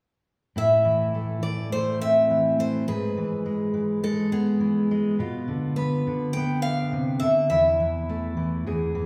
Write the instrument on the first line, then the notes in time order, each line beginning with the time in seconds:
steel-string acoustic guitar
0.56 A2 E4 E5
0.85 E3
1.14 A3
1.42 E3 D5
1.72 A3 C5
2.01 C4 E5
2.30 E3
2.59 A3 C5
2.88 G#2 G#4 B4
3.17 E3
3.46 G#3
3.74 E3
4.03 G#3 A4
4.32 B3 G#4
4.60 E3
4.91 G#3
5.19 B2 F4
5.48 D3
5.76 B3 B4
6.07 D3
6.33 B3 G5
6.62 D4 F5
6.92 C3
7.20 D3 E5
7.50 E2 E4 E5
7.80 E3
8.09 A3
8.37 E3
8.66 E2 G#4
8.95 E3